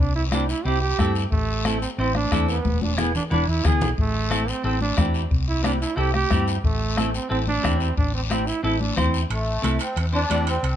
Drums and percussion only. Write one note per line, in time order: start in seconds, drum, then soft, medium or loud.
0.00 long guiro medium
0.32 bombo rim medium
0.32 high conga medium
0.32 short guiro medium
0.49 short guiro medium
0.66 long guiro medium
0.99 bombo low medium
0.99 bombo rim medium
0.99 high conga medium
0.99 short guiro medium
1.15 short guiro medium
1.32 bombo low medium
1.32 long guiro medium
1.65 bombo rim medium
1.65 high conga medium
1.65 short guiro medium
1.82 short guiro medium
1.99 long guiro medium
2.15 bombo rim medium
2.15 high conga medium
2.32 bombo low medium
2.32 bombo rim medium
2.32 high conga medium
2.32 short guiro medium
2.48 short guiro medium
2.65 bombo low medium
2.65 high conga medium
2.65 long guiro medium
2.82 high conga medium
2.98 bombo rim medium
2.98 low conga medium
2.98 short guiro medium
3.15 low conga medium
3.15 short guiro medium
3.31 low conga medium
3.31 long guiro medium
3.64 bombo low medium
3.64 bombo rim medium
3.64 low conga medium
3.64 short guiro medium
3.81 low conga medium
3.81 short guiro medium
3.98 bombo low medium
3.98 long guiro medium
4.31 bombo rim medium
4.31 high conga medium
4.31 short guiro medium
4.48 short guiro medium
4.64 long guiro medium
4.81 high conga medium
4.97 bombo low medium
4.97 bombo rim medium
4.97 high conga medium
4.97 short guiro medium
5.14 short guiro medium
5.31 bombo low medium
5.31 long guiro medium
5.64 bombo rim medium
5.64 high conga medium
5.64 short guiro medium
5.82 short guiro medium
5.98 long guiro medium
6.14 bombo rim medium
6.14 high conga medium
6.30 bombo low medium
6.30 bombo rim medium
6.30 high conga medium
6.30 short guiro medium
6.48 short guiro medium
6.64 bombo low medium
6.64 long guiro medium
6.97 bombo rim medium
6.97 high conga medium
6.97 short guiro medium
7.14 short guiro medium
7.32 long guiro medium
7.47 high conga medium
7.64 bombo low medium
7.64 bombo rim medium
7.64 high conga medium
7.64 short guiro medium
7.80 short guiro medium
7.97 bombo low medium
7.97 long guiro medium
8.31 bombo rim medium
8.31 high conga medium
8.31 short guiro medium
8.47 short guiro medium
8.64 long guiro medium
8.81 high conga medium
8.97 bombo low medium
8.97 bombo rim medium
8.97 high conga medium
8.97 short guiro medium
9.14 short guiro medium
9.30 high timbale medium
9.30 long guiro medium
9.63 high conga medium
9.63 high timbale medium
9.63 short guiro medium
9.79 high timbale medium
9.79 short guiro medium
9.96 high timbale medium
9.96 long guiro medium
10.30 high conga medium
10.30 high timbale medium
10.30 short guiro medium
10.47 high timbale medium
10.47 short guiro medium
10.64 high timbale medium
10.64 long guiro medium